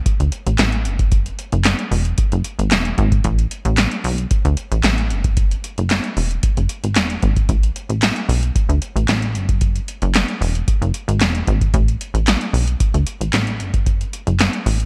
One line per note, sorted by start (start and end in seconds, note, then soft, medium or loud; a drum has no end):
0.06 kick loud
0.06 closed hi-hat medium
0.20 0.31 D2 medium
0.20 closed hi-hat medium
0.32 closed hi-hat medium
0.47 0.57 A1 medium
0.47 closed hi-hat medium
0.58 0.87 A1 loud
0.58 snare loud
0.58 clap medium
0.58 closed hi-hat medium
0.72 closed hi-hat medium
0.85 1.30 F#1 loud
0.85 closed hi-hat medium
0.99 kick medium
0.99 closed hi-hat medium
1.12 kick loud
1.12 closed hi-hat medium
1.26 closed hi-hat medium
1.39 closed hi-hat medium
1.52 1.75 F#1 loud
1.52 closed hi-hat soft
1.64 snare loud
1.64 clap loud
1.64 closed hi-hat medium
1.79 closed hi-hat soft
1.91 2.14 E1 loud
1.91 open hi-hat medium
2.05 closed hi-hat soft
2.18 kick loud
2.18 closed hi-hat medium
2.32 2.43 F#1 medium
2.32 closed hi-hat medium
2.44 closed hi-hat medium
2.59 2.73 G#1 medium
2.59 closed hi-hat medium
2.71 2.94 E1 medium
2.71 snare loud
2.71 clap medium
2.71 closed hi-hat medium
2.85 closed hi-hat medium
2.98 3.20 G#1 loud
2.98 kick medium
2.98 closed hi-hat medium
3.12 kick medium
3.12 closed hi-hat medium
3.24 3.47 A1 loud
3.24 kick loud
3.24 closed hi-hat medium
3.39 closed hi-hat medium
3.51 closed hi-hat medium
3.65 3.88 A1 loud
3.65 closed hi-hat soft
3.77 snare loud
3.77 clap loud
3.77 closed hi-hat medium
3.91 closed hi-hat soft
4.04 4.27 B1 loud
4.04 open hi-hat medium
4.18 closed hi-hat soft
4.31 kick loud
4.31 closed hi-hat loud
4.45 4.55 D2 medium
4.45 closed hi-hat medium
4.57 closed hi-hat medium
4.72 4.82 A1 medium
4.72 closed hi-hat medium
4.83 5.12 A1 medium
4.83 snare loud
4.83 clap medium
4.83 closed hi-hat medium
4.98 closed hi-hat medium
5.10 5.55 F#1 loud
5.10 closed hi-hat medium
5.24 kick loud
5.24 closed hi-hat medium
5.37 kick loud
5.37 closed hi-hat medium
5.51 closed hi-hat medium
5.64 closed hi-hat medium
5.78 6.00 F#1 loud
5.78 closed hi-hat soft
5.90 snare loud
5.90 clap medium
5.90 closed hi-hat medium
6.04 closed hi-hat soft
6.17 6.39 E1 loud
6.17 open hi-hat medium
6.31 closed hi-hat soft
6.43 kick loud
6.43 closed hi-hat loud
6.57 6.68 F#1 medium
6.57 closed hi-hat medium
6.69 closed hi-hat medium
6.84 6.98 G#1 medium
6.84 closed hi-hat medium
6.95 7.19 E1 loud
6.95 snare loud
6.95 clap medium
6.95 closed hi-hat medium
7.10 closed hi-hat soft
7.23 7.45 G#1 loud
7.23 kick medium
7.23 closed hi-hat medium
7.36 kick loud
7.36 closed hi-hat medium
7.49 7.72 A1 loud
7.49 kick loud
7.49 closed hi-hat medium
7.63 closed hi-hat medium
7.76 closed hi-hat medium
7.89 8.12 A1 loud
7.89 closed hi-hat soft
8.02 snare loud
8.02 clap loud
8.02 closed hi-hat medium
8.16 closed hi-hat soft
8.29 8.51 B1 loud
8.29 open hi-hat medium
8.43 closed hi-hat soft
8.56 kick loud
8.56 closed hi-hat medium
8.69 8.80 D2 medium
8.69 closed hi-hat medium
8.82 closed hi-hat medium
8.96 9.06 A1 medium
8.96 closed hi-hat medium
9.08 9.36 A1 medium
9.08 snare loud
9.08 clap medium
9.08 closed hi-hat medium
9.22 closed hi-hat soft
9.35 9.80 F#1 loud
9.35 closed hi-hat medium
9.49 kick loud
9.49 closed hi-hat medium
9.61 kick loud
9.61 closed hi-hat medium
9.76 closed hi-hat medium
9.88 closed hi-hat medium
10.02 10.25 F#1 loud
10.02 closed hi-hat soft
10.14 snare loud
10.14 clap loud
10.14 closed hi-hat medium
10.28 closed hi-hat soft
10.41 10.64 E1 loud
10.41 open hi-hat medium
10.55 closed hi-hat soft
10.68 kick loud
10.68 closed hi-hat medium
10.82 10.92 F#1 medium
10.82 closed hi-hat medium
10.94 closed hi-hat medium
11.08 11.22 G#1 medium
11.08 closed hi-hat medium
11.21 11.43 E1 medium
11.21 snare loud
11.21 clap medium
11.21 closed hi-hat medium
11.35 closed hi-hat medium
11.47 11.70 G#1 loud
11.47 kick medium
11.47 closed hi-hat medium
11.61 kick medium
11.61 closed hi-hat medium
11.74 11.96 A1 loud
11.74 kick loud
11.74 closed hi-hat medium
11.88 closed hi-hat medium
12.01 closed hi-hat medium
12.14 12.37 A1 loud
12.14 closed hi-hat soft
12.27 snare loud
12.27 clap loud
12.27 closed hi-hat medium
12.41 closed hi-hat soft
12.53 12.76 B1 loud
12.53 open hi-hat medium
12.68 closed hi-hat soft
12.80 kick loud
12.80 closed hi-hat loud
12.94 13.05 D2 medium
12.94 closed hi-hat medium
13.07 closed hi-hat medium
13.21 13.31 A1 medium
13.21 closed hi-hat medium
13.33 13.62 A1 loud
13.33 snare loud
13.33 clap loud
13.33 closed hi-hat medium
13.47 closed hi-hat medium
13.60 14.05 F#1 loud
13.60 closed hi-hat medium
13.74 kick loud
13.74 closed hi-hat medium
13.86 kick loud
13.86 closed hi-hat medium
14.01 closed hi-hat medium
14.13 closed hi-hat medium
14.27 14.49 F#1 loud
14.27 closed hi-hat soft
14.39 snare loud
14.39 clap medium
14.39 closed hi-hat medium
14.53 closed hi-hat soft
14.66 14.85 A1 loud
14.66 open hi-hat medium
14.80 closed hi-hat soft